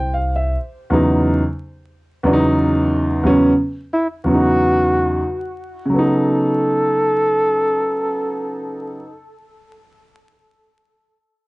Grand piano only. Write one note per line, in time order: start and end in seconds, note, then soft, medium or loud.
0.00 0.12 G5 medium
0.14 0.35 F5 medium
0.36 0.57 E5 medium
0.90 1.40 E2 medium
0.90 1.41 C#3 medium
0.90 1.41 F#3 medium
0.90 1.41 B3 medium
0.90 1.42 D#4 medium
2.23 3.19 E2 medium
2.23 3.19 C#3 medium
2.23 3.20 F#3 medium
2.23 3.20 B3 medium
2.23 2.34 D4 medium
2.33 3.24 D#4 medium
3.23 3.49 E2 medium
3.23 3.50 C#3 medium
3.23 3.50 F#3 medium
3.23 3.51 B3 medium
3.23 3.51 C#4 loud
4.24 5.19 E2 medium
4.24 5.20 C#3 medium
4.24 5.20 F#3 medium
4.24 5.20 B3 medium
4.24 4.34 C#4 medium
4.34 5.24 D#4 medium
5.85 8.96 C#3 medium
5.90 9.00 F#3 medium
5.94 9.04 B3 medium
5.98 9.09 D#4 medium